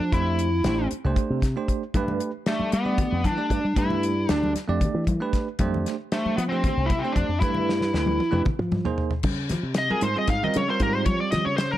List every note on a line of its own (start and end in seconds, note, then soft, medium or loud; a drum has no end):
0.00 0.12 F3 medium
0.00 0.13 D4 medium
0.12 0.62 F2 medium
0.12 0.48 A3 medium
0.12 0.48 D4 medium
0.12 0.87 E4 medium
0.12 0.48 G4 medium
0.12 0.48 C5 medium
0.12 kick medium
0.12 closed hi-hat medium
0.39 closed hi-hat medium
0.64 0.89 A1 medium
0.64 0.92 A3 medium
0.64 0.92 D4 medium
0.64 0.92 G4 medium
0.64 0.92 C5 medium
0.64 snare medium
0.64 closed hi-hat medium
0.91 muted slap bass stroke soft
0.91 closed hi-hat medium
1.04 1.16 C2 medium
1.04 1.39 A3 medium
1.04 1.39 D4 medium
1.04 1.40 G4 medium
1.04 1.40 C5 medium
1.16 muted slap bass stroke soft
1.16 kick medium
1.16 closed hi-hat medium
1.30 1.54 C3 medium
1.42 kick medium
1.42 snare soft
1.42 closed hi-hat medium
1.56 1.82 A3 medium
1.56 1.82 D4 medium
1.56 1.82 G4 medium
1.56 1.83 C5 medium
1.68 kick medium
1.68 closed hi-hat soft
1.94 2.19 G2 medium
1.94 2.30 A3 medium
1.94 2.30 D4 medium
1.94 2.30 G4 medium
1.94 2.31 B4 medium
1.94 kick loud
1.94 closed hi-hat medium
1.94 high conga medium
1.94 low conga soft
2.08 low conga medium
2.20 closed hi-hat soft
2.46 2.73 A3 medium
2.46 2.73 D4 medium
2.46 2.73 G4 medium
2.46 2.73 D5 medium
2.46 snare medium
2.46 closed hi-hat medium
2.60 muted slap bass stroke soft
2.60 high conga medium
2.72 2.98 G3 medium
2.72 3.27 B3 medium
2.72 closed hi-hat soft
2.85 3.20 A3 medium
2.85 3.20 D4 medium
2.85 3.20 G4 medium
2.85 3.21 D5 medium
2.85 low conga soft
2.98 kick medium
2.98 closed hi-hat medium
2.98 low conga medium
3.12 3.26 F2 medium
3.24 3.37 E3 medium
3.24 3.74 D4 medium
3.24 kick medium
3.24 closed hi-hat medium
3.24 high conga medium
3.37 3.63 A3 medium
3.37 3.64 D4 medium
3.37 3.64 G4 medium
3.37 3.64 D5 medium
3.50 3.63 G2 medium
3.50 kick medium
3.50 closed hi-hat soft
3.65 3.76 G3 medium
3.76 4.26 G2 medium
3.76 4.12 A3 medium
3.76 4.12 D4 medium
3.76 4.32 E4 medium
3.76 4.12 G4 medium
3.76 4.12 B4 medium
3.76 kick medium
3.76 closed hi-hat medium
3.76 high conga medium
3.76 low conga soft
3.90 low conga medium
4.03 closed hi-hat medium
4.29 4.54 D2 medium
4.29 4.55 A3 medium
4.29 4.55 D4 medium
4.29 4.52 D4 medium
4.29 4.55 G4 medium
4.29 4.56 D5 medium
4.29 snare medium
4.29 closed hi-hat medium
4.43 high conga medium
4.56 muted slap bass stroke soft
4.56 snare soft
4.56 closed hi-hat medium
4.68 4.81 F2 medium
4.68 5.03 A3 medium
4.68 5.04 D4 medium
4.68 5.04 G4 medium
4.68 5.04 D5 medium
4.68 low conga soft
4.81 muted slap bass stroke soft
4.81 kick medium
4.81 closed hi-hat medium
4.81 low conga medium
4.94 5.19 E3 medium
5.07 kick medium
5.07 closed hi-hat medium
5.07 high conga loud
5.20 5.47 A3 medium
5.20 5.47 D4 medium
5.20 5.47 G4 medium
5.20 5.47 B4 medium
5.33 kick medium
5.33 snare soft
5.33 closed hi-hat medium
5.59 5.84 F2 medium
5.59 5.95 A3 medium
5.59 5.95 D4 medium
5.59 5.95 G4 medium
5.59 5.95 C5 medium
5.59 kick medium
5.59 closed hi-hat medium
5.59 high conga medium
5.59 low conga soft
5.74 low conga medium
5.86 snare soft
5.86 closed hi-hat medium
6.12 6.37 A3 medium
6.12 6.38 A3 medium
6.12 6.39 D4 medium
6.12 6.39 G4 medium
6.12 6.39 C5 medium
6.12 snare medium
6.12 closed hi-hat medium
6.25 muted slap bass stroke soft
6.25 high conga medium
6.37 6.62 F3 medium
6.37 6.42 B3 medium
6.37 closed hi-hat medium
6.49 6.86 A3 medium
6.49 6.90 C4 medium
6.49 6.86 D4 medium
6.49 6.87 G4 medium
6.49 6.87 C5 medium
6.49 low conga soft
6.64 kick medium
6.64 closed hi-hat medium
6.64 low conga medium
6.77 6.92 C2 medium
6.86 7.00 E4 medium
6.86 kick medium
6.86 closed hi-hat medium
6.86 high conga medium
6.90 7.02 C3 medium
6.99 7.15 C4 medium
7.04 7.30 A3 medium
7.04 7.30 D4 medium
7.04 7.30 G4 medium
7.04 7.30 C5 medium
7.12 7.28 F2 medium
7.12 7.38 D4 medium
7.12 kick medium
7.12 closed hi-hat soft
7.29 7.41 F2 medium
7.40 7.91 G2 medium
7.40 7.77 A3 medium
7.40 7.77 D4 medium
7.40 8.41 E4 medium
7.40 7.78 G4 medium
7.40 7.78 B4 medium
7.40 kick medium
7.40 closed hi-hat medium
7.40 high conga medium
7.40 low conga soft
7.54 low conga medium
7.69 snare soft
7.69 low conga soft
7.81 snare soft
7.81 low conga soft
7.93 8.19 D2 medium
7.93 8.20 A3 medium
7.93 8.20 D4 medium
7.93 8.20 G4 medium
7.93 8.21 B4 medium
7.93 snare medium
7.93 low conga soft
8.06 high tom medium
8.06 high conga medium
8.19 muted slap bass stroke soft
8.19 high tom medium
8.19 low conga soft
8.31 8.45 F2 medium
8.31 8.45 A3 medium
8.31 8.46 D4 medium
8.31 8.46 G4 medium
8.31 8.46 B4 medium
8.31 mid tom medium
8.31 low conga soft
8.46 kick medium
8.46 mid tom medium
8.46 low conga medium
8.59 8.84 F3 medium
8.59 mid tom medium
8.72 mid tom medium
8.72 high conga medium
8.85 9.11 A#3 medium
8.85 9.12 D#4 medium
8.85 9.12 G#4 medium
8.85 9.12 C5 medium
8.85 floor tom medium
8.98 floor tom medium
9.11 floor tom medium
9.23 9.49 C#3 medium
9.23 kick medium
9.23 crash medium
9.23 high conga medium
9.49 9.63 F3 medium
9.49 snare soft
9.49 closed hi-hat medium
9.49 low conga medium
9.63 9.88 C3 medium
9.74 9.90 D#5 medium
9.74 snare medium
9.74 closed hi-hat medium
9.74 low conga soft
9.89 10.07 G3 medium
9.89 10.07 C4 medium
9.89 10.08 F4 medium
9.89 10.03 G#4 soft
9.89 10.08 A#4 medium
9.89 high conga medium
10.01 10.15 G#2 medium
10.01 10.15 C5 medium
10.01 closed hi-hat medium
10.01 low conga soft
10.16 10.33 G3 medium
10.16 10.33 C4 medium
10.16 10.34 F4 medium
10.16 10.34 G#4 medium
10.16 10.30 D#5 medium
10.16 low conga soft
10.28 10.41 G#2 medium
10.28 10.44 F5 medium
10.28 kick medium
10.28 snare soft
10.28 closed hi-hat medium
10.43 10.60 G3 medium
10.43 10.60 C4 medium
10.43 10.61 F4 medium
10.43 10.61 A#4 medium
10.43 10.56 D#5 medium
10.43 low conga medium
10.54 10.68 C#3 medium
10.54 10.69 C#5 medium
10.54 closed hi-hat medium
10.54 high conga medium
10.68 10.77 G3 medium
10.68 10.77 C4 medium
10.68 10.78 F4 medium
10.68 10.78 A#4 medium
10.68 10.82 C5 medium
10.80 11.05 G#2 medium
10.80 11.51 G3 medium
10.80 11.51 C4 medium
10.80 11.51 F4 medium
10.80 11.52 G4 medium
10.80 10.95 A#4 medium
10.80 kick medium
10.80 closed hi-hat medium
10.80 low conga soft
10.95 11.06 C5 medium
10.95 low conga soft
11.06 11.19 F3 medium
11.06 11.19 C#5 medium
11.06 kick loud
11.06 closed hi-hat medium
11.06 high conga medium
11.20 11.31 D5 medium
11.31 11.45 F3 medium
11.31 11.45 D#5 medium
11.31 snare soft
11.31 closed hi-hat medium
11.31 low conga medium
11.45 11.78 C#3 medium
11.45 11.56 C#5 medium
11.57 11.71 C5 medium
11.57 snare medium
11.57 closed hi-hat medium
11.62 low conga soft
11.72 11.78 A#4 medium
11.72 high conga medium